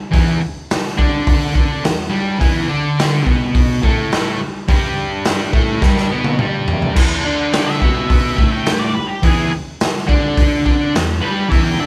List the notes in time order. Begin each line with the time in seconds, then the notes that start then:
0.11 E2 E3, kick, open hi-hat
0.41 muted overdriven electric guitar stroke
0.70 snare, open hi-hat
0.87 snare
0.98 D3 D4, kick
1.27 kick, open hi-hat
1.54 D3 D4, kick
1.82 E2, snare, open hi-hat
2.10 G2 G3
2.39 E2 E3, kick, open hi-hat
2.69 D3 D4
2.99 snare, open hi-hat
3.26 B2 B3, kick
3.55 kick, open hi-hat
3.82 A2 A3, kick
4.12 snare, open hi-hat
4.41 muted overdriven electric guitar stroke
4.68 G2 G3, kick, open hi-hat
5.25 snare, open hi-hat
5.53 A2 A3, kick
5.81 G2 G3, kick, snare
5.97 snare
6.10 B2 B3
6.24 high tom
6.38 G2 G3, mid tom
6.68 floor tom
6.82 floor tom
6.96 E2 E3, kick, crash
7.25 D3 D4
7.53 G5, snare, open hi-hat
7.66 E5, snare
7.82 B2 B3, kick
8.10 kick, open hi-hat
8.38 A2 A3, kick
8.52 G5
8.66 snare, open hi-hat
8.79 D5
8.95 B4, muted overdriven electric guitar stroke
9.08 G4
9.22 E2 E3 G#4, kick, open hi-hat
9.52 muted overdriven electric guitar stroke
9.80 snare, open hi-hat
9.96 snare
10.07 D3 D4, kick
10.37 kick, open hi-hat
10.65 D3 D4, kick
10.94 E2, snare, open hi-hat
11.21 G2 G3 B4
11.49 E2 E3 E5, kick, open hi-hat
11.64 G5
11.79 D3 D4 E5